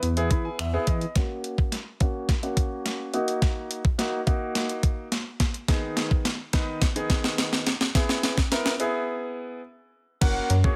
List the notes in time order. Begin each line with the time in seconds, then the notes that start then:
0.03 E2, closed hi-hat
0.17 B3 E4 G#4, closed hi-hat
0.31 E3 B5, kick, closed hi-hat
0.45 G#5
0.59 E2 E5, finger snap, closed hi-hat
0.73 B3 E4 G#4
0.87 E3 D#5, kick, closed hi-hat
1.01 closed hi-hat
1.15 A#3 C#4 F#4, kick, snare, closed hi-hat
1.44 closed hi-hat
1.58 kick
1.72 snare, closed hi-hat
2.00 A#3 C#4 F#4, kick, closed hi-hat
2.29 kick, snare, closed hi-hat
2.43 A#3 C#4 F#4, closed hi-hat
2.57 kick, closed hi-hat
2.86 snare, closed hi-hat
3.14 A#3 D#4 F#4, closed hi-hat
3.28 closed hi-hat
3.42 kick, snare, closed hi-hat
3.71 closed hi-hat
3.85 kick
3.98 A#3 D#4 F#4, snare, closed hi-hat
4.26 A#3 D#4 F#4, kick, closed hi-hat
4.55 snare, closed hi-hat
4.69 closed hi-hat
4.83 kick, closed hi-hat
5.12 snare, closed hi-hat
5.40 kick, snare, closed hi-hat
5.54 closed hi-hat
5.68 D#3 B3 D#4 G#4, kick, snare, closed hi-hat
5.97 snare, closed hi-hat
6.11 kick
6.25 snare, closed hi-hat
6.53 D#3 B3 D#4 B4, kick, snare, closed hi-hat
6.82 kick, snare, closed hi-hat
6.96 D#3 B3 D#4 G#4, closed hi-hat
7.10 kick, snare, closed hi-hat
7.24 snare
7.38 snare, closed hi-hat
7.53 snare
7.67 snare, closed hi-hat
7.81 snare, closed hi-hat
7.95 B3 E4 G#4, kick, snare, closed hi-hat
8.09 snare
8.23 snare, closed hi-hat
8.38 kick, snare
8.51 B3 E4 A#4, snare, closed hi-hat
8.66 snare
8.80 B3 E4 G#4, closed hi-hat
10.21 F#1 A#3 C#4 F#4 A#4 F#5, kick, closed hi-hat, crash
10.50 F#2, closed hi-hat
10.64 A#3 C#4 F#4 G#4 C#5, kick